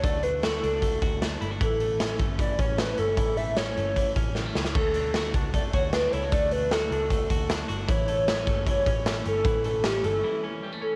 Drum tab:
CC |----------------|----------------|----------------|x---------------|
HH |x-x-x-x-x-x-x-x-|x-x-x-x-x-x-x-x-|x-x-x-x-x-x-----|--x-x-x-x-x-x-x-|
SD |----o-------o---|----o-------o---|----o-------o-oo|----o-------o---|
BD |o-------o-o-----|o-----o-o-o-----|o-------o-o-----|o-----o-o-o-----|

CC |----------------|----------------|----------------|
HH |x-x-x-x-x-x-x-x-|x-x-x-x-x-x-x-x-|x-x-x-x---------|
SD |----o-------o---|----o-------o---|----o-----------|
BD |o-------o-o-----|o-----o-o-o-----|o---------------|